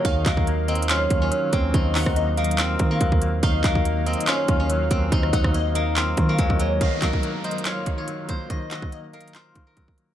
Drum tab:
HH |x-----x-----x-----x-x-x-x-----x-----x-----x-----|x-----o-----x-----x-x-x-x-----x-----x-----x-----|x-----x-----x-----x-x-x-x-----x-----x-----x-----|x-----x-----x-----x-----x-----x-----x-----x-----|
CP |------x-----------------x-----------------------|------x-----------------x-----------------------|------x-----------------x-----------------------|------------------------x-----------------------|
SD |------------------------------------------------|---------r--------------------------------------|------------------------------------------------|---r-----r--------------------------------------|
BD |o-----o--o--------------------o-----------o-----|o--------o--------------------o-----o--o--------|o-----o--o--------------------o-----------o-----|o-----o--o--------------------o-----o--o--------|

HH |x-----x-----x-----x-x-x-x-----x-----x-----x-----|x-----x-----x-----x-x-x-x-----x-----x-----x-----|
CP |------x-----------------x-----------------------|------x-----------------x-----------------------|
SD |------------------------------------------------|------------------------------------------------|
BD |o-----o--o--------------------o-----------o-----|o--------o--------------------o-----o--o--------|